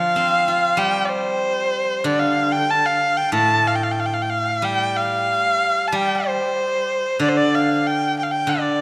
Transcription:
Already playing: guzheng D3 F3, erhu F5
0.16 guzheng C4
0.48 guzheng F4
0.77 guzheng G3, erhu G5
1.05 erhu D5
1.09 erhu C5
2.04 guzheng D3, erhu D5
2.19 erhu F5
2.52 erhu G5
2.70 erhu A5
2.86 erhu F5
3.17 erhu G5
3.32 guzheng A2, erhu A5
3.67 erhu F5
3.76 erhu G5
3.84 erhu F5
3.91 erhu G5
4.00 erhu F5
4.06 erhu G5
4.14 erhu F5
4.22 erhu G5
4.30 erhu F5
4.62 guzheng G3, erhu G5
4.97 erhu F5
5.88 erhu A5
5.92 guzheng G3, erhu G5
6.28 erhu C5
7.20 guzheng D3, erhu D5
7.29 erhu C5
7.37 erhu D5
7.55 erhu F5
7.87 erhu G5
8.19 erhu G5
8.23 erhu F5
8.32 erhu G5
8.47 guzheng D3, erhu D5

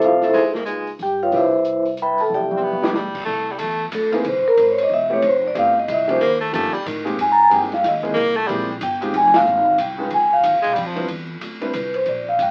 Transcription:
Already playing: grand piano C4 E4 G4 A4
0.01 upright bass C2, vibraphone A4 C5, closed hi-hat
0.05 vibraphone F4 F5
0.22 vibraphone E4 A4 C5 E5, snare, open hi-hat
0.33 upright bass C#2, baritone saxophone G#3, grand piano B3 D#4 F4 G#4, kick, open hi-hat
0.54 baritone saxophone A#3, snare
0.65 baritone saxophone G#3, grand piano B3 D#4 F4 G#4, closed hi-hat
0.87 open hi-hat
0.99 upright bass G2, vibraphone G4 G5, open hi-hat
1.23 vibraphone F4 B4 C#5 F5
1.32 upright bass C2, grand piano B3 D4 E4 G4, kick, open hi-hat
1.36 vibraphone E4 B4 C5 E5
1.65 closed hi-hat
1.85 open hi-hat
1.97 closed hi-hat
2.02 vibraphone B4 E5 G5 B5
2.18 vibraphone A4 A5, open hi-hat
2.29 upright bass C2, mid tom
2.34 vibraphone G4 D5 E5 G5
2.40 mid tom
2.51 mid tom
2.56 baritone saxophone C4
2.62 baritone saxophone B3, mid tom
2.73 mid tom
2.82 grand piano B3 D4 E4 G4, snare
2.94 baritone saxophone G3, snare
3.15 kick, crash
3.25 upright bass C2, baritone saxophone A3, kick
3.52 baritone saxophone G3
3.59 upright bass E2, baritone saxophone A3, kick, hi-hat pedal, ride
3.91 upright bass D2, vibraphone A4, kick, hi-hat pedal, ride
4.12 grand piano A#3 C4 D#4 E4 G#4, vibraphone B4, ride
4.24 upright bass C2, vibraphone C5, kick, ride
4.45 vibraphone A#4, muted upright bass stroke
4.57 upright bass G#1, vibraphone C5, kick, hi-hat pedal, ride
4.71 vibraphone C#5
4.78 ride
4.83 vibraphone D#5
4.89 upright bass E1, kick
4.94 vibraphone E5
5.10 grand piano A3 B3 C4 E4 G4, vibraphone C#5
5.22 upright bass F1, kick, ride
5.26 vibraphone C5
5.48 vibraphone D5
5.54 upright bass G1, grand piano A3 B3 C4 E4 G4, kick, hi-hat pedal, ride
5.58 vibraphone F5
5.80 vibraphone D#5
5.88 upright bass C2, kick, hi-hat pedal, ride
5.92 vibraphone E5
6.07 grand piano F3 A#3 C#4 D#4 G4, vibraphone C5, ride
6.20 upright bass D#2, baritone saxophone A#3, kick, ride
6.40 baritone saxophone A3
6.53 upright bass G2, grand piano F3 A#3 C#4 D#4 G4, baritone saxophone A3, kick, hi-hat pedal, ride
6.64 upright bass D#2
6.74 upright bass C#2, baritone saxophone G3, ride
6.86 upright bass A2, baritone saxophone D#3, kick, hi-hat pedal, ride
7.05 grand piano G#3 A#3 C4 D#4 G4, ride
7.18 upright bass G#2, vibraphone G#5, kick, ride
7.32 vibraphone A#5
7.43 vibraphone G#5
7.50 upright bass G2, grand piano G#3 A#3 C4 D#4 G4, vibraphone G5, kick, hi-hat pedal, ride
7.62 snare
7.72 vibraphone F5, snare, ride
7.83 upright bass D#2, vibraphone D#5, kick, snare, hi-hat pedal, ride
8.03 grand piano G#3 A#3 C4 E4 G#4, kick, ride
8.14 upright bass C2, baritone saxophone A#3, kick, ride
8.36 baritone saxophone A3
8.47 upright bass A#1, baritone saxophone G3, grand piano G#3 A#3 C4 E4 G4, kick, ride
8.81 upright bass G1, vibraphone G5, kick, hi-hat pedal, ride
9.01 grand piano G#3 C4 D#4 F4 G4, ride
9.13 upright bass F1, vibraphone G#5, kick, ride
9.34 vibraphone F5, snare, ride
9.45 upright bass G#1, hi-hat pedal
9.66 kick
9.78 upright bass C2, vibraphone G5, kick, hi-hat pedal, ride
9.98 grand piano G#3 C#4 D#4 F4 B4
10.10 upright bass C#2, vibraphone G#5, kick, ride
10.33 vibraphone F5
10.43 upright bass D#2, kick, hi-hat pedal, ride
10.54 upright bass C#2
10.62 upright bass B1, baritone saxophone G#3, ride
10.74 upright bass F2, baritone saxophone G3, kick, hi-hat pedal, ride
10.86 baritone saxophone F3
10.96 grand piano G3 C4 D4 E4 B4, ride
11.08 upright bass E2, kick, ride
11.41 upright bass D2, kick, hi-hat pedal, ride
11.61 grand piano G3 C4 D4 E4 B4, ride
11.73 upright bass C2, vibraphone B4, kick, hi-hat pedal, ride
11.94 vibraphone C5, ride
12.06 upright bass A#1, vibraphone D5, kick, ride
12.29 vibraphone F5
12.39 upright bass G#1, vibraphone G5, kick, hi-hat pedal, ride

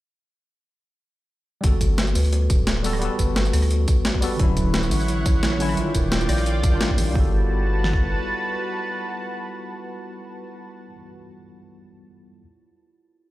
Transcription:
1.61 sub bass G1, tine electric piano G3 B3 F#4, kalimba F#4, kick, closed hi-hat
1.67 tine electric piano A4
1.81 kalimba A4, kick, closed hi-hat, tambourine
1.98 kalimba F#4, snare, closed hi-hat
2.07 tambourine
2.15 sub bass D2, kalimba B4, open hi-hat, tambourine
2.24 tambourine
2.32 kalimba F#4, closed hi-hat
2.50 sub bass D1, kalimba A4, kick, closed hi-hat, tambourine
2.67 kalimba F#4, snare, closed hi-hat
2.76 cross-stick
2.83 tine electric piano G3 B3 F#4 A4, kalimba A4, open hi-hat, tambourine
2.93 cross-stick
2.99 tine electric piano G3 B3, kalimba F#4, closed hi-hat
3.03 tine electric piano F#4 A4
3.19 sub bass G1, kalimba B4, kick, closed hi-hat, tambourine
3.36 kalimba F#4, snare, closed hi-hat
3.45 tambourine
3.53 sub bass D2, kalimba A4, cross-stick, open hi-hat, tambourine
3.62 cross-stick, tambourine
3.71 kalimba F#4, closed hi-hat
3.88 kalimba A4, kick, closed hi-hat, tambourine
4.05 kalimba F#4, snare, closed hi-hat
4.14 kick
4.21 tine electric piano G3 B3 F#4 A4, kalimba B4, open hi-hat, tambourine
4.37 sub bass D1, tine electric piano D3 F#3, kalimba E4, analog synth pad E4 C#5 F#5, kick, closed hi-hat
4.41 tine electric piano C#4 E4
4.57 kalimba A4, kick, closed hi-hat, tambourine
4.74 kalimba E4, snare, closed hi-hat
4.83 tambourine
4.91 sub bass A1, kalimba A4, open hi-hat, tambourine
5.00 tambourine
5.08 kalimba E4, closed hi-hat
5.26 sub bass A1, kalimba C#5, kick, closed hi-hat, tambourine
5.43 kalimba E4, snare, closed hi-hat
5.52 cross-stick
5.59 tine electric piano D3 F#3 C#4 E4, kalimba A4, open hi-hat, tambourine
5.69 cross-stick
5.74 tine electric piano D#3 G3, kalimba F4, analog synth pad F4 D5 G5, closed hi-hat
5.79 tine electric piano D4 F4
5.95 sub bass D#1, kalimba A#4, kick, closed hi-hat, tambourine
6.12 kalimba F4, snare, closed hi-hat
6.21 tambourine
6.29 sub bass A#1, kalimba D5, cross-stick, open hi-hat, tambourine
6.38 cross-stick, tambourine
6.46 kalimba F4, closed hi-hat
6.63 kalimba F5, kick, closed hi-hat, tambourine
6.70 tine electric piano D#3 G3
6.74 tine electric piano D4 F4
6.81 kalimba F5, snare, closed hi-hat
6.90 kick
6.98 sub bass A#1, kalimba G4, open hi-hat, tambourine
7.11 tine electric piano G3 B3
7.15 sub bass G1, kalimba F#4, analog synth pad F#4 B4 A5, tine electric piano F#4, kick
7.20 tine electric piano A4
7.84 snare
7.93 kick

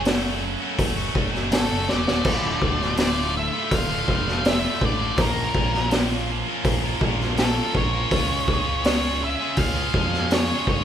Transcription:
Already playing: picked electric bass F#1
0.05 distorted electric guitar F#2 C#3 F#3 A3 C#4 F#4, snare, open hi-hat
0.42 distorted electric guitar F#3 A3 C#4 F#4, muted distorted electric guitar stroke
0.60 distorted electric guitar F#3 A3 C#4 F#4
0.79 picked electric bass F#1, kick, open hi-hat
0.97 distorted electric guitar F#3 A3 C#4 F#4
1.15 picked electric bass F#1, distorted electric guitar F#3 A3 C#4 F#4, kick
1.33 distorted electric guitar F#3 A3 C#4 F#4, snare
1.51 picked electric bass G#1, distorted electric guitar F#2 C#3 F#3 A3 C#4 F#4, lead electric guitar A4, snare, open hi-hat
1.70 picked electric bass F#1, distorted electric guitar F#3 A3 C#4 F#4
1.88 picked electric bass E1, distorted electric guitar F#3 A3 C#4 F#4, lead electric guitar D5, snare
2.07 picked electric bass D#1, distorted electric guitar F#3 A3 C#4 F#4, snare
2.25 picked electric bass D1, distorted electric guitar D2 A2 D3 A3, kick, crash
2.29 distorted electric guitar F4
2.62 picked electric bass D1, distorted electric guitar A2 D3 A3 F4, kick
2.79 distorted electric guitar D3 A3 F4, snare
2.97 distorted electric guitar D2 A2 D3 A3 F4, snare, open hi-hat
3.01 lead electric guitar D5
3.33 distorted electric guitar A2 D3 A3 F4, muted distorted electric guitar stroke
3.37 lead electric guitar E5
3.52 distorted electric guitar D3 A3 F4
3.71 picked electric bass D1, lead electric guitar F5, kick, open hi-hat
3.89 distorted electric guitar D3 A3 F4
4.06 picked electric bass F1, distorted electric guitar A2 D3 A3 F4, kick
4.25 distorted electric guitar D3 A3 F4, snare
4.44 distorted electric guitar D2 A2 D3 A3 F4, snare, open hi-hat
4.48 lead electric guitar E5
4.62 distorted electric guitar D3 A3 F4
4.81 picked electric bass A1, distorted electric guitar A2 D3 A3 F4, lead electric guitar D5, kick
5.00 distorted electric guitar D3 A3 F4
5.17 picked electric bass A#1, distorted electric guitar A#2 F3 A#3 C#4 F4 A#4, kick, open hi-hat
5.21 lead electric guitar A#4
5.54 picked electric bass A#1, distorted electric guitar A#3 C#4 F4 A#4, kick
5.74 distorted electric guitar A#3 C#4 F4 A#4, snare
5.91 distorted electric guitar A#2 F3 A#3 C#4 F4, snare, open hi-hat
5.95 distorted electric guitar A#4
6.30 distorted electric guitar A#3 C#4 F4 A#4, muted distorted electric guitar stroke
6.47 distorted electric guitar A#3 C#4 F4 A#4
6.64 picked electric bass A#1, kick, open hi-hat
6.84 distorted electric guitar A#3 C#4 F4 A#4
7.01 picked electric bass A#1, distorted electric guitar A#3 C#4 F4 A#4, kick
7.20 distorted electric guitar A#3 C#4 F4 A#4, snare
7.37 distorted electric guitar A#2 F3 A#3 C#4 F4 A#4, lead electric guitar A4, snare, open hi-hat
7.56 distorted electric guitar A#3 C#4 F4 A#4
7.75 picked electric bass A#1, distorted electric guitar A#3 C#4, lead electric guitar C#5, kick
7.79 distorted electric guitar F4 A#4
7.93 distorted electric guitar A#3 C#4 F4 A#4
8.11 picked electric bass C#2, distorted electric guitar C#3 G#3 C#4 F4, kick, open hi-hat
8.15 distorted electric guitar G#4
8.47 picked electric bass C#2, distorted electric guitar G#3 C#4, kick
8.53 distorted electric guitar F4 G#4
8.68 distorted electric guitar C#4 F4 G#4
8.84 distorted electric guitar C#3 G#3 C#4 F4 G#4, lead electric guitar C#5, snare, open hi-hat
9.20 distorted electric guitar G#3 C#4 F4 G#4, muted distorted electric guitar stroke
9.24 lead electric guitar E5
9.41 distorted electric guitar C#4 F4 G#4
9.57 picked electric bass C#2, lead electric guitar F5, kick, open hi-hat
9.76 distorted electric guitar C#4 F4 G#4
9.94 picked electric bass F2, distorted electric guitar G#3 C#4 F4, kick
9.98 distorted electric guitar G#4
10.13 distorted electric guitar C#4 F4 G#4, snare
10.31 distorted electric guitar C#3 G#3 C#4 F4 G#4, lead electric guitar C#5, snare, open hi-hat
10.50 distorted electric guitar C#4 F4 G#4
10.67 picked electric bass G1, distorted electric guitar G#3 C#4, lead electric guitar C#5, kick
10.72 distorted electric guitar F4 G#4

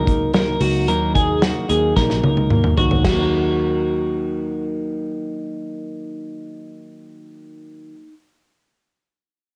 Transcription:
Already playing: picked electric bass C#2, clean electric guitar A#4
0.05 steel-string acoustic guitar F#3 A#3 D#4, kick, closed hi-hat
0.33 steel-string acoustic guitar D#3 F#3 A#3 D#4, clean electric guitar A#4, snare, closed hi-hat
0.60 picked electric bass C#2, steel-string acoustic guitar F#3 A#3 D#4, clean electric guitar F#4, open hi-hat
0.88 picked electric bass D#2, steel-string acoustic guitar D#3 F#3 A#3 D#4, clean electric guitar A#4, closed hi-hat
1.14 steel-string acoustic guitar F#3 A#3 D#4, clean electric guitar G#4, kick, closed hi-hat
1.42 steel-string acoustic guitar D#3 F#3 A#3 D#4, clean electric guitar F#4, snare, closed hi-hat
1.69 picked electric bass D#2, steel-string acoustic guitar F#3 A#3 D#4, clean electric guitar G#4, closed hi-hat
1.96 picked electric bass A#1, steel-string acoustic guitar D#3 F#3 A#3 D#4, clean electric guitar A#4, kick, snare
2.10 snare
2.23 picked electric bass C#2, steel-string acoustic guitar F#3 A#3 D#4, high tom
2.37 high tom
2.51 picked electric bass D#2, steel-string acoustic guitar D#3 F#3 A#3 D#4, mid tom
2.64 mid tom
2.78 picked electric bass D#2, steel-string acoustic guitar F#3 A#3 D#4, clean electric guitar F#4, floor tom
2.91 floor tom
2.99 steel-string acoustic guitar D#3
3.05 picked electric bass D#2, steel-string acoustic guitar F#3, clean electric guitar F#4, kick, snare, crash
3.13 steel-string acoustic guitar A#3
3.19 steel-string acoustic guitar D#4

